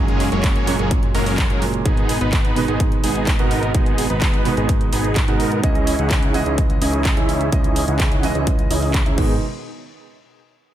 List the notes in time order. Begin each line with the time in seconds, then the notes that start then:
Already playing: F#1 A#2 F#3 G#3 A#3 C#4 D#4 G#4
0.08 closed hi-hat
0.20 open hi-hat
0.32 F#1 F#3 G#3 A#3 C#4 C#5, closed hi-hat
0.44 kick, clap, closed hi-hat
0.56 closed hi-hat
0.66 A#2 F#3 G#3 C#4, open hi-hat
0.79 F#1 F#3 G#3 A#3 C#4 G#4, closed hi-hat
0.91 kick, closed hi-hat
1.03 closed hi-hat
1.15 F#1 F#3 G#3 A#3 C#4 A#4, open hi-hat
1.26 open hi-hat
1.38 kick, clap, closed hi-hat
1.50 F#1 F#3 G#3 A#3 C#4 A#4, closed hi-hat
1.61 A#2 F#3 G#3 A#3, open hi-hat
1.74 closed hi-hat
1.84 G#1 B2 D#3 G#3 B3 D#4 G#4, kick, closed hi-hat
1.97 closed hi-hat
2.09 open hi-hat
2.21 G#1 B3 D#4 B4, closed hi-hat
2.33 kick, clap, closed hi-hat
2.45 closed hi-hat
2.55 B2 D#3 G#3 D#4, open hi-hat
2.68 G#1 B3 D#4 G#4, closed hi-hat
2.80 kick, closed hi-hat
2.92 closed hi-hat
3.04 G#1 B3 D#4 G#4, open hi-hat
3.15 closed hi-hat
3.27 kick, clap, closed hi-hat
3.38 G#1 B2 D#3 G#3 B3 D#4 F#4 A#4, closed hi-hat
3.51 open hi-hat
3.63 closed hi-hat
3.73 G#1 B2 D#3 G#3 B3 D#4 G#4, kick, closed hi-hat
3.86 closed hi-hat
3.98 open hi-hat
4.10 G#1 B3 D#4 B4, closed hi-hat
4.22 kick, clap, closed hi-hat
4.34 closed hi-hat
4.44 B2 D#3 G#3 D#4, open hi-hat
4.57 G#1 B3 D#4 G#4, closed hi-hat
4.69 kick, closed hi-hat
4.81 closed hi-hat
4.93 G#1 B3 D#4 G#4, open hi-hat
5.04 closed hi-hat
5.16 kick, clap, closed hi-hat
5.27 G#2 B2 D#3 G#3 B3 D#4 F#4 A#4, closed hi-hat
5.40 open hi-hat
5.52 closed hi-hat
5.62 C#2 C#3 E3 G#3 C#4 D#4 E4 G#4 D#5, kick, closed hi-hat
5.75 closed hi-hat
5.87 open hi-hat
5.99 C#2 C#4 D#4 E4 G#4 F#5, closed hi-hat
6.11 kick, clap, closed hi-hat
6.22 closed hi-hat
6.33 C#3 E3 G#3 D#5, open hi-hat
6.46 C#2 C#4 D#4 E4 G#4 D#5, closed hi-hat
6.58 kick, closed hi-hat
6.70 closed hi-hat
6.82 C#2 C#4 D#4 E4 G#4 D#5, open hi-hat
6.93 closed hi-hat
7.05 kick, clap, closed hi-hat
7.16 C#2 C#3 E3 G#3 C#4 D#4 E4 G#4 E5, closed hi-hat
7.29 open hi-hat
7.41 closed hi-hat
7.51 C#2 C#3 E3 G#3 C#4 D#4 E4 D#5, kick, closed hi-hat
7.64 closed hi-hat
7.76 open hi-hat
7.88 C#2 C#4 D#4 E4 G#4 F#5, closed hi-hat
8.00 kick, clap, closed hi-hat
8.12 closed hi-hat
8.22 C#3 E3 G#3 D#5, open hi-hat
8.35 C#2 C#4 D#4 E4 G#4 D#5, closed hi-hat
8.47 kick, closed hi-hat
8.59 closed hi-hat
8.71 C#2 C#4 D#4 E4 G#4 D#5, open hi-hat
8.82 open hi-hat
8.94 kick, clap, closed hi-hat
9.06 C#2 C#4 D#4 E4 G#4 E5, closed hi-hat
9.16 G#1 B2 D#3 G#3 B3 D#4 G#4, kick, crash